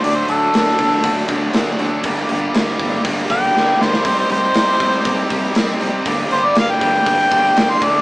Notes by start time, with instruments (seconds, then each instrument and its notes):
0.04 picked electric bass D2, overdriven electric guitar D3 F#3 A3 D4 F#4, harmonica D5, open hi-hat
0.15 harmonica C5
0.29 picked electric bass D2, overdriven electric guitar D3 F#3 A3 D4 F#4, harmonica A4, open hi-hat
0.54 picked electric bass D2, overdriven electric guitar D3 F#3 A3 D4 F#4, snare, open hi-hat
0.79 picked electric bass D2, overdriven electric guitar D3 F#3 A3 D4 F#4, kick, open hi-hat
1.04 picked electric bass D2, overdriven electric guitar D3 F#3 A3 D4 F#4, kick, open hi-hat
1.28 picked electric bass D2, overdriven electric guitar D3 F#3 A3 D4 F#4, kick, open hi-hat
1.53 picked electric bass D2, overdriven electric guitar D3 F#3 A3 D4 F#4, snare, open hi-hat
1.78 picked electric bass D2, overdriven electric guitar D3 F#3 A3 D4 F#4, open hi-hat
2.04 picked electric bass G1, overdriven electric guitar G2 D3 G3 A#3 D4 G4, kick, open hi-hat
2.29 picked electric bass G1, overdriven electric guitar G2 D3 G3 A#3 D4 G4, open hi-hat
2.54 picked electric bass G1, overdriven electric guitar G2 D3 G3 A#3 D4 G4, snare, open hi-hat
2.79 picked electric bass G1, overdriven electric guitar G2 D3 G3 A#3 D4 G4, kick, open hi-hat
3.04 picked electric bass G1, overdriven electric guitar G2 D3 G3 A#3 D4 G4, kick, open hi-hat
3.29 picked electric bass G1, overdriven electric guitar G2 D3 G3 A#3 D4 G4, harmonica G5, kick, open hi-hat
3.55 picked electric bass G1, overdriven electric guitar G2 D3 G3 A#3 D4 G4, snare
3.80 picked electric bass G1, overdriven electric guitar G2 D3 G3 A#3 D4 G4, harmonica C5, snare
3.93 snare
4.05 picked electric bass C2, overdriven electric guitar C3 G3 C4 D#4 G4, harmonica C5, kick, open hi-hat
4.19 harmonica C5
4.30 picked electric bass C2, overdriven electric guitar C3 G3 C4 D#4 G4, harmonica C5, open hi-hat
4.43 snare
4.54 picked electric bass C2, overdriven electric guitar C3 G3 C4 D#4 G4, snare, open hi-hat
4.80 picked electric bass C2, overdriven electric guitar C3 G3 C4 D#4 G4, kick, open hi-hat
5.05 picked electric bass C2, overdriven electric guitar C3 G3 C4 D#4 G4, kick, open hi-hat
5.30 picked electric bass C2, overdriven electric guitar C3 G3 C4 D#4 G4, kick, open hi-hat
5.55 picked electric bass C2, overdriven electric guitar C3 G3 C4 D#4 G4, snare, open hi-hat
5.80 picked electric bass C2, overdriven electric guitar C3 G3 C4 D#4 G4, open hi-hat
6.06 picked electric bass G1, overdriven electric guitar G2 D3 G3 A#3 D4 G4, kick, open hi-hat
6.30 picked electric bass G1, overdriven electric guitar G2 D3 G3 A#3 D4 G4, harmonica C5, open hi-hat
6.45 harmonica D5
6.55 picked electric bass G1, overdriven electric guitar G2 D3 G3 A#3 D4 G4, harmonica F5, snare, open hi-hat
6.71 harmonica G5
6.81 picked electric bass G1, overdriven electric guitar G2 D3 G3 A#3 D4 G4, kick, open hi-hat
7.06 picked electric bass G1, overdriven electric guitar G2 D3 G3 A#3 D4 G4, kick, open hi-hat
7.32 picked electric bass G1, overdriven electric guitar G2 D3 G3 A#3 D4 G4, kick, open hi-hat
7.57 picked electric bass G1, overdriven electric guitar G2 D3 G3 A#3 D4 G4, snare, open hi-hat
7.71 harmonica C6
7.82 picked electric bass D2, overdriven electric guitar D3 A3 D4 F#4, harmonica D5, kick, open hi-hat